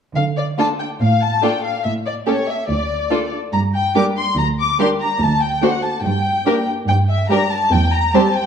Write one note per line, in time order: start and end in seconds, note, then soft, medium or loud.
0.16 0.50 D3 soft
0.16 0.24 F5 soft
0.37 0.45 D5 soft
0.58 0.66 A3 soft
0.58 0.66 D4 soft
0.58 0.67 F4 soft
0.58 0.67 A4 soft
0.58 0.67 A5 soft
0.80 0.88 G5 soft
1.00 1.34 A2 soft
1.00 1.21 F5 soft
1.22 1.43 A5 soft
1.42 1.50 A3 soft
1.42 1.51 D4 soft
1.42 1.51 F4 soft
1.42 1.51 A4 soft
1.42 1.64 G5 soft
1.64 1.85 F5 soft
1.85 2.18 A2 soft
1.85 1.93 E5 soft
2.07 2.15 D5 soft
2.27 2.35 A3 soft
2.27 2.35 C#4 soft
2.27 2.35 G4 soft
2.27 2.35 A4 soft
2.27 2.48 C#5 soft
2.48 2.69 E5 soft
2.69 3.02 D2 soft
2.69 3.31 D5 soft
3.10 3.19 A3 soft
3.10 3.19 D4 soft
3.10 3.18 F4 soft
3.10 3.19 A4 soft
3.53 3.87 G2 soft
3.53 3.61 A#5 soft
3.74 3.95 G5 soft
3.95 4.04 G3 soft
3.95 4.04 D4 soft
3.95 4.03 G4 soft
3.95 4.04 A#4 soft
3.95 4.04 D6 medium
4.17 4.37 C6 soft
4.37 4.71 D2 soft
4.37 4.46 A#5 soft
4.59 4.79 D6 soft
4.80 4.88 G3 soft
4.80 4.88 D4 soft
4.80 4.88 G4 soft
4.80 4.88 A#4 soft
4.80 4.88 C6 soft
5.01 5.21 A#5 soft
5.21 5.54 D2 soft
5.21 5.42 A5 medium
5.42 5.63 G5 soft
5.62 5.70 A3 soft
5.62 5.70 D4 soft
5.62 5.71 F#4 soft
5.62 5.71 C5 soft
5.62 5.83 F#5 soft
5.84 6.04 A5 soft
6.04 6.37 G2 soft
6.04 6.66 G5 soft
6.46 6.54 A#3 soft
6.46 6.54 D4 soft
6.46 6.54 G4 soft
6.46 6.54 A#4 soft
6.88 7.21 G2 soft
6.88 6.96 G5 medium
7.09 7.30 E5 soft
7.30 7.39 G3 soft
7.30 7.39 D4 soft
7.30 7.38 G4 soft
7.30 7.39 A#4 soft
7.30 7.51 A#5 medium
7.51 7.72 A5 medium
7.72 8.06 E2 soft
7.72 7.93 G5 medium
7.94 8.15 A#5 medium
8.14 8.23 G3 soft
8.14 8.23 C4 soft
8.14 8.22 G4 soft
8.14 8.22 C5 soft
8.14 8.36 A5 soft
8.35 8.46 G5 medium